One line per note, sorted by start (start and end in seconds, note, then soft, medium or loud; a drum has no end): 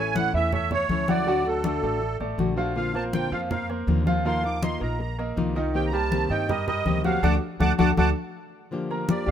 0.00 0.28 A1 medium
0.00 0.15 A3 soft
0.00 0.27 A3 medium
0.00 0.15 C#4 soft
0.00 0.15 E4 soft
0.00 0.28 A4 medium
0.00 0.28 C#5 medium
0.00 0.14 G#5 loud
0.15 0.33 E3 medium
0.15 0.34 A3 medium
0.15 0.34 C#4 medium
0.15 0.32 E4 medium
0.15 0.33 F#5 loud
0.15 high conga loud
0.34 0.86 E2 medium
0.34 0.49 E3 medium
0.34 0.52 A3 soft
0.34 0.52 C#4 medium
0.34 0.52 E4 medium
0.34 0.49 E4 medium
0.34 0.50 E5 medium
0.34 0.52 E5 medium
0.52 0.68 A3 medium
0.52 0.68 A4 medium
0.52 0.68 C#5 medium
0.52 0.71 E5 loud
0.52 muted nylon-string guitar stroke medium
0.52 high conga soft
0.52 low conga medium
0.71 1.02 A3 medium
0.71 1.02 A4 medium
0.71 1.02 C#5 medium
0.71 1.11 C#5 loud
0.71 high conga soft
0.71 low conga medium
0.89 1.77 D2 loud
0.89 1.07 E3 medium
0.89 1.08 A3 medium
0.89 1.08 C#4 medium
0.89 1.06 E4 medium
0.89 high conga medium
1.07 1.24 F#3 medium
1.07 1.26 A3 soft
1.07 1.27 C#4 soft
1.07 1.26 E4 soft
1.07 1.24 F#4 medium
1.07 1.47 D5 loud
1.07 1.24 F#5 medium
1.07 high conga medium
1.26 1.45 D3 medium
1.26 1.58 F#3 medium
1.26 1.45 A3 medium
1.26 1.45 D4 medium
1.26 1.58 F#4 medium
1.26 1.44 F#4 medium
1.26 1.58 F#5 medium
1.26 high conga soft
1.45 1.63 A3 soft
1.45 1.64 D4 soft
1.45 1.63 F#4 soft
1.45 2.17 A4 medium
1.45 high conga soft
1.64 1.82 D3 medium
1.64 1.80 A3 medium
1.64 1.82 A3 medium
1.64 1.82 D4 medium
1.64 1.81 F#4 medium
1.64 1.80 A4 medium
1.64 1.80 D5 medium
1.64 high conga loud
1.82 2.18 A1 medium
1.82 2.14 A3 medium
1.82 2.00 A3 soft
1.82 2.01 D4 soft
1.82 2.00 F#4 medium
1.82 2.14 A4 medium
1.82 2.14 D5 medium
1.82 high conga soft
2.01 muted nylon-string guitar stroke medium
2.01 high conga soft
2.20 2.37 A1 medium
2.20 2.51 A3 medium
2.20 2.51 A4 medium
2.20 2.51 D5 medium
2.20 high conga soft
2.38 3.26 A#1 medium
2.38 2.56 D3 medium
2.38 2.57 A3 medium
2.38 2.57 D4 medium
2.38 2.55 F#4 medium
2.38 high conga medium
2.57 2.88 F3 medium
2.57 2.76 A3 soft
2.57 2.76 D4 soft
2.57 2.88 F4 medium
2.57 2.75 F#4 medium
2.57 2.88 F5 medium
2.57 high conga soft
2.75 2.94 D3 medium
2.75 2.94 A#3 medium
2.75 2.94 C4 medium
2.75 2.93 F4 medium
2.75 2.94 F5 medium
2.75 high conga soft
2.94 3.25 A#3 medium
2.94 3.12 A#3 soft
2.94 3.13 C4 soft
2.94 3.12 F4 soft
2.94 3.25 A#4 medium
2.94 3.26 C5 medium
2.94 3.04 A5 loud
2.94 high conga soft
3.13 3.31 D3 medium
3.13 3.31 A#3 medium
3.13 3.32 C4 medium
3.13 3.31 F4 medium
3.13 3.33 G5 medium
3.13 high conga medium
3.31 3.84 F2 medium
3.31 3.47 F3 medium
3.31 3.50 A#3 soft
3.31 3.50 C4 soft
3.31 3.50 F4 medium
3.31 3.47 F4 medium
3.31 3.48 F5 medium
3.31 3.41 F5 medium
3.50 3.66 A#3 medium
3.50 3.66 A#4 medium
3.50 3.66 C5 medium
3.50 3.68 F5 medium
3.50 muted nylon-string guitar stroke soft
3.50 high conga soft
3.50 low conga medium
3.69 4.00 A#3 medium
3.69 4.00 A#4 medium
3.69 4.00 C5 medium
3.69 high conga soft
3.87 4.75 D#2 loud
3.87 4.06 D3 medium
3.87 4.06 A#3 medium
3.87 4.06 C4 medium
3.87 4.05 F4 medium
3.87 high conga medium
4.06 4.22 F3 medium
4.06 4.24 A#3 soft
4.06 4.25 C4 medium
4.06 4.24 F4 soft
4.06 4.22 F4 medium
4.06 4.22 F5 medium
4.06 high conga medium
4.24 4.43 D#3 medium
4.24 4.56 F3 medium
4.24 4.43 A#3 medium
4.24 4.43 D#4 medium
4.24 4.56 F4 medium
4.24 4.44 F4 medium
4.24 4.42 A#4 medium
4.24 4.56 F5 medium
4.24 4.44 C6 medium
4.24 high conga soft
4.43 4.62 D#4 soft
4.43 4.62 F4 soft
4.43 4.62 A#4 soft
4.43 4.62 D6 medium
4.43 high conga soft
4.62 4.80 D#3 medium
4.62 4.78 A#3 medium
4.62 4.80 A#3 medium
4.62 4.81 D#4 medium
4.62 4.81 F4 medium
4.62 4.78 A#4 medium
4.62 4.79 A#4 medium
4.62 4.78 D#5 medium
4.62 4.80 C6 medium
4.62 high conga medium
4.80 5.33 A#1 medium
4.80 5.12 A#3 medium
4.80 4.99 D#4 soft
4.80 4.99 F4 soft
4.80 4.99 A#4 medium
4.80 5.12 A#4 medium
4.80 5.12 D#5 medium
4.80 4.99 A#5 medium
4.80 high conga soft
4.99 5.17 A#5 medium
4.99 muted nylon-string guitar stroke medium
4.99 high conga soft
5.18 5.49 A#3 medium
5.18 5.49 A#4 medium
5.18 5.49 D#5 medium
5.18 high conga soft
5.36 6.24 C2 medium
5.36 5.55 D#3 medium
5.36 5.55 A#3 medium
5.36 5.55 D#4 medium
5.36 5.55 F4 medium
5.36 5.54 A#4 medium
5.36 high conga medium
5.55 5.86 D#3 medium
5.55 5.86 D#4 medium
5.55 5.74 D#4 soft
5.55 5.74 F4 soft
5.55 5.73 A#4 medium
5.55 5.87 D#5 medium
5.55 high conga soft
5.74 5.92 C3 medium
5.74 5.92 D#3 medium
5.74 5.92 A#3 medium
5.74 5.92 C4 medium
5.74 5.91 G4 medium
5.74 5.86 G5 medium
5.74 high conga soft
5.86 5.93 A#5 medium
5.92 6.23 G3 medium
5.92 6.11 A#3 soft
5.92 6.11 C4 soft
5.92 6.10 G4 medium
5.92 6.24 G4 medium
5.92 6.24 A#4 medium
5.92 6.31 A5 loud
5.92 high conga soft
6.11 6.29 C3 medium
6.11 6.29 D#3 medium
6.11 6.30 A#3 medium
6.11 6.30 C4 medium
6.11 6.29 G4 medium
6.11 high conga medium
6.30 6.82 G2 medium
6.30 6.45 D#3 medium
6.30 6.48 A#3 soft
6.30 6.48 C4 soft
6.30 6.46 D#4 medium
6.30 6.48 G4 medium
6.30 6.46 D#5 medium
6.30 6.49 G5 medium
6.49 6.64 G3 medium
6.49 6.64 G4 medium
6.49 6.65 A#4 medium
6.49 6.66 D#5 medium
6.49 muted nylon-string guitar stroke medium
6.49 high conga soft
6.49 low conga medium
6.67 6.98 G3 medium
6.67 6.98 G4 medium
6.67 6.98 A#4 medium
6.67 7.02 D#5 loud
6.67 high conga soft
6.67 low conga medium
6.85 7.20 D2 medium
6.85 7.03 C3 medium
6.85 7.04 D#3 medium
6.85 7.04 A#3 medium
6.85 7.04 C4 medium
6.85 7.03 G4 medium
6.85 high conga medium
7.04 7.20 F#3 medium
7.04 7.23 A#3 soft
7.04 7.23 C4 medium
7.04 7.20 F#4 medium
7.04 7.22 G4 medium
7.04 7.24 F5 medium
7.04 7.20 F#5 medium
7.04 high conga medium
7.23 7.37 D2 loud
7.23 7.35 A3 medium
7.23 7.35 D4 loud
7.23 7.35 F#4 loud
7.23 7.35 F#4 medium
7.23 7.35 A4 loud
7.23 7.35 F#5 medium
7.23 7.35 A5 medium
7.23 7.35 D6 medium
7.23 high conga medium
7.60 7.74 D2 medium
7.60 7.72 A3 medium
7.60 7.72 D4 medium
7.60 7.72 F#4 medium
7.60 7.72 A4 medium
7.60 7.73 F#5 loud
7.60 7.72 A5 loud
7.60 7.72 D6 medium
7.60 high conga loud
7.78 7.93 D2 medium
7.78 7.91 A3 loud
7.78 7.91 D4 loud
7.78 7.91 D4 medium
7.78 7.91 F#4 medium
7.78 7.91 F#4 loud
7.78 7.91 A4 medium
7.78 7.91 F#5 loud
7.78 7.91 A5 loud
7.78 7.91 D6 loud
7.78 high conga loud
7.97 8.11 D2 medium
7.97 8.10 A3 medium
7.97 8.09 D4 medium
7.97 8.10 F#4 medium
7.97 8.10 F#4 loud
7.97 8.10 A4 loud
7.97 8.10 F#5 loud
7.97 8.10 A5 loud
7.97 8.10 D6 loud
7.97 high conga medium
8.71 9.08 D3 medium
8.71 9.07 F3 medium
8.71 9.08 A#3 medium
8.71 9.09 D4 medium
8.71 9.09 G4 medium
8.71 high conga soft
8.90 9.21 A#3 medium
8.90 9.21 A#4 medium
8.90 9.21 A#5 medium
8.90 high conga soft
9.08 9.26 F3 soft
9.08 9.27 A#3 soft
9.08 9.26 D4 soft
9.08 9.25 G4 medium
9.08 9.28 D5 medium
9.08 high conga loud
9.26 9.31 D2 medium
9.26 9.31 D4 medium
9.26 9.31 G4 medium